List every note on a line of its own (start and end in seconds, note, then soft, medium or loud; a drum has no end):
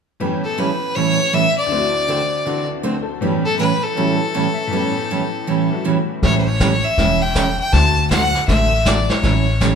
0.20 1.71 A2 soft
0.20 0.42 A2 soft
0.20 0.42 E3 soft
0.20 1.71 E3 soft
0.20 0.42 G3 medium
0.20 1.71 B3 soft
0.20 0.42 C#4 soft
0.20 1.71 C#4 soft
0.20 0.42 E4 medium
0.20 1.72 G4 medium
0.20 0.43 A4 medium
0.45 0.60 A4 medium
0.58 0.70 A2 medium
0.58 0.70 E3 medium
0.58 0.70 G3 medium
0.58 0.70 C#4 medium
0.58 0.70 E4 medium
0.58 0.70 A4 medium
0.58 0.97 B4 medium
0.95 1.18 A2 medium
0.95 1.18 E3 medium
0.95 1.18 G3 medium
0.95 1.18 C#4 medium
0.95 1.18 E4 medium
0.95 1.18 A4 medium
0.95 1.35 C#5 loud
1.33 1.45 A2 medium
1.33 1.45 E3 medium
1.33 1.45 G3 medium
1.33 1.45 C#4 medium
1.33 1.45 E4 medium
1.33 1.45 A4 medium
1.33 1.57 E5 loud
1.57 2.66 D5 medium
1.66 3.19 D2 medium
1.66 3.20 D3 medium
1.71 1.93 D3 soft
1.71 1.93 A3 soft
1.71 1.93 C4 soft
1.71 3.22 C4 medium
1.71 3.23 E4 soft
1.71 1.93 F#4 medium
1.71 1.93 A4 medium
1.77 2.47 F#4 medium
2.08 2.20 D3 medium
2.08 2.20 A3 medium
2.08 2.20 C4 medium
2.08 2.20 F#4 medium
2.08 2.21 A4 medium
2.45 2.68 D3 medium
2.45 3.20 E3 soft
2.45 2.68 A3 medium
2.45 2.68 C4 medium
2.45 3.22 D4 soft
2.45 2.68 F#4 medium
2.45 3.23 F#4 soft
2.45 2.68 A4 medium
2.65 2.91 D5 soft
2.83 2.95 D3 medium
2.83 2.95 A3 medium
2.83 2.95 C4 medium
2.83 2.96 F#4 medium
2.83 2.96 A4 medium
2.83 3.12 C5 soft
3.02 3.29 A4 medium
3.21 4.66 A2 medium
3.21 3.43 A2 soft
3.21 4.69 E3 medium
3.21 3.43 E3 soft
3.21 3.44 G3 soft
3.21 4.72 G3 medium
3.21 4.71 B3 soft
3.21 3.95 C#4 medium
3.21 3.44 C#4 medium
3.21 3.44 E4 medium
3.21 3.44 A4 medium
3.45 3.58 A4 medium
3.59 3.71 A2 medium
3.59 3.71 E3 medium
3.59 3.71 G3 medium
3.59 3.71 C#4 medium
3.59 3.71 E4 medium
3.59 3.71 A4 medium
3.59 3.85 B4 medium
3.83 5.85 A4 medium
3.95 4.19 A2 medium
3.95 4.19 E3 medium
3.95 4.71 F#3 soft
3.95 4.19 G3 medium
3.95 4.72 C#4 soft
3.95 4.19 C#4 medium
3.95 4.72 E4 soft
3.95 4.19 E4 medium
3.95 4.19 A4 medium
3.95 4.14 A4 soft
4.16 4.42 A4 soft
4.34 4.46 A2 medium
4.34 4.46 E3 medium
4.34 4.46 G3 medium
4.34 4.46 C#4 medium
4.34 4.46 E4 medium
4.34 4.46 A4 medium
4.34 4.63 C#5 soft
4.54 4.80 E5 medium
4.67 6.20 A2 medium
4.67 5.69 E3 soft
4.72 4.94 A2 soft
4.72 4.94 E3 soft
4.72 4.94 G3 medium
4.72 6.23 B3 medium
4.72 4.94 C#4 soft
4.72 6.21 C#4 medium
4.72 4.94 E4 medium
4.72 4.94 A4 medium
4.78 6.22 G4 medium
5.10 5.22 A2 medium
5.10 5.22 E3 medium
5.10 5.22 G3 medium
5.10 5.22 C#4 medium
5.10 5.22 E4 medium
5.10 5.22 A4 medium
5.47 5.69 A2 medium
5.47 5.69 E3 medium
5.47 5.69 G3 medium
5.47 5.69 C#4 medium
5.47 5.69 E4 medium
5.47 5.69 A4 medium
5.70 6.22 E3 soft
5.70 6.23 G3 soft
5.70 6.21 A3 soft
5.70 6.24 F#4 soft
5.85 5.96 A2 medium
5.85 5.97 E3 medium
5.85 5.97 G3 medium
5.85 5.97 C#4 medium
5.85 5.97 E4 medium
5.85 5.97 A4 medium
6.23 6.83 A1 medium
6.23 6.45 E3 soft
6.23 6.45 G3 soft
6.23 6.79 A3 medium
6.23 6.79 C#4 soft
6.23 6.45 C#4 medium
6.23 6.80 E4 soft
6.23 6.45 E4 soft
6.23 6.80 G4 medium
6.23 6.45 A4 medium
6.23 6.37 C#5 medium
6.23 brush sweep medium
6.23 kick soft
6.23 snare soft
6.38 6.48 C5 medium
6.47 6.86 C#5 medium
6.60 6.72 E3 medium
6.60 6.72 G3 medium
6.60 6.72 C#4 medium
6.60 6.72 E4 medium
6.60 6.72 A4 medium
6.60 kick soft
6.60 snare medium
6.60 hi-hat pedal medium
6.84 7.23 E5 medium
6.98 7.58 E1 medium
6.98 7.20 E3 medium
6.98 7.20 G3 medium
6.98 7.20 C#4 medium
6.98 7.20 E4 medium
6.98 7.20 A4 medium
6.98 brush sweep medium
6.98 kick soft
6.98 snare soft
7.22 7.59 G5 medium
7.35 7.47 E3 medium
7.35 7.47 G3 medium
7.35 7.47 C#4 medium
7.35 7.47 E4 medium
7.35 7.47 A4 medium
7.35 kick soft
7.35 snare medium
7.35 hi-hat pedal medium
7.59 7.75 G5 medium
7.72 8.33 D2 medium
7.72 7.95 D3 medium
7.72 8.29 A3 medium
7.72 7.95 A3 soft
7.72 8.30 C4 medium
7.72 7.95 C4 medium
7.72 8.30 D4 soft
7.72 8.30 F#4 medium
7.72 7.95 F#4 medium
7.72 7.95 A4 medium
7.72 8.10 A5 loud
7.72 brush sweep soft
7.72 kick soft
7.72 snare soft
8.10 8.22 D3 medium
8.10 8.22 A3 medium
8.10 8.23 C4 medium
8.10 8.23 F#4 medium
8.10 8.23 A4 medium
8.10 8.45 F#5 medium
8.10 kick soft
8.10 snare medium
8.10 hi-hat pedal medium
8.35 snare soft
8.48 9.08 A1 medium
8.48 8.70 D3 medium
8.48 8.70 A3 medium
8.48 8.70 C4 medium
8.48 8.71 F#4 medium
8.48 8.71 A4 medium
8.48 8.87 E5 medium
8.48 brush sweep soft
8.48 kick soft
8.48 snare soft
8.86 8.97 D3 medium
8.86 8.97 A3 medium
8.86 8.98 C4 medium
8.86 8.98 F#4 medium
8.86 8.98 A4 medium
8.86 9.11 D5 medium
8.86 kick soft
8.86 snare medium
8.86 hi-hat pedal medium
9.09 9.75 C#5 medium
9.09 snare soft
9.23 9.75 A1 medium
9.23 9.45 E3 soft
9.23 9.45 G3 medium
9.23 9.45 C#4 medium
9.23 9.45 E4 medium
9.23 9.45 A4 medium
9.23 brush sweep medium
9.23 kick soft
9.23 snare soft
9.61 9.72 E3 medium
9.61 9.72 G3 medium
9.61 9.73 C#4 medium
9.61 9.73 E4 medium
9.61 9.73 A4 medium
9.61 kick soft
9.61 snare medium
9.61 hi-hat pedal soft